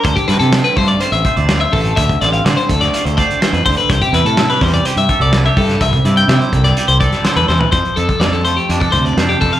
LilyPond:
<<
  \new Staff \with { instrumentName = "Clean electric guitar" } { \time 4/4 \key c \major \tempo 4 = 125 c''16 g'16 b'16 a'8 b'16 c''16 d''16 c''16 e''8 d''8 e''16 a'8 | e''8 d''16 f''16 d''16 c''16 a'16 d''8 c''16 d''8 c''16 b'16 c''16 b'16 | c''16 g'16 b'16 a'8 b'16 c''16 d''16 c''16 e''8 d''8 e''16 a'8 | e''8 d''16 g''16 e''16 c''16 a'16 d''8 c''16 d''8 c''16 b'16 c''16 b'16 |
c''8 a'8 d''16 a'16 c''16 g'8 a'16 c''16 d''8 g'16 a'16 f''16 | }
  \new Staff \with { instrumentName = "Clean electric guitar" } { \time 4/4 \key c \major << { r8 c'8 f'4 f'8 c''8 f'4 | r8 c'8 f'4 f'8 c''4. | r8 e'8 e'16 g'8. g'8 a'8 e'16 g'8. | r8 e'8 g'4 g'8 a'4.~ |
a'8 a'8 f'4 d'4 c''4 | } \\ { d4. a2 a8 | d4. a4. e8 d8 | c4. g2 g8 | c4. g4. d8 e8 |
f4. a4 c4. | } >> }
  \new Staff \with { instrumentName = "Fingered electric bass" } { \clef bass \time 4/4 \key c \major d,16 r16 g,16 c8 r16 g,8 r16 a,,16 r16 d,8. a,,8 | d,8 a,,8 d16 r16 d,8 r16 d,8 r8 f,16 d,16 r16 | c,16 r16 e,16 a,8 r16 e,8 r16 g,16 r16 c,8. g,8 | c,8 g,8 c16 r16 c,8 r16 c,8 r8 e,16 e,16 r16 |
f,16 r16 f,16 r16 f,4 f,8 d,8 f,8 f,16 r16 | }
  \new DrumStaff \with { instrumentName = "Drums" } \drummode { \time 4/4 <hh bd>16 <hh bd>16 <hh sn>16 hh16 <hh sn>16 hh16 <hho bd>16 hh16 hh16 hh16 <hh bd>16 hh16 <hh sn>8 <hho bd>16 hh16 | <hh bd>16 <hh bd>16 <hh sn>16 hh16 <hh sn>16 hh16 <hh bd>16 <hh sn>16 hh16 hh16 <hh bd>16 hh16 <hh sn>16 hh16 <hho bd>16 hh16 | <hh bd>16 <hh bd>16 hh16 hh16 <hh sn>16 hh16 <hho bd sn>16 hh16 hh16 hh16 <hh bd>16 hh16 <hh sn>8 <hho bd>16 <hh sn>16 | <hh bd>16 <hh bd>16 hh16 hh16 <hh sn>16 hh16 <hh bd>16 <hh sn>16 hh16 hh16 <hh bd>16 <hh sn>16 <hh sn>16 hh16 sn16 tomfh16 |
<hh bd>16 hh16 hh16 <hh bd>16 <hh sn>16 hh16 hh16 hh16 hh16 <hh bd>16 <hh bd>16 hh16 <hh sn>16 hh16 <hho bd>16 hh16 | }
>>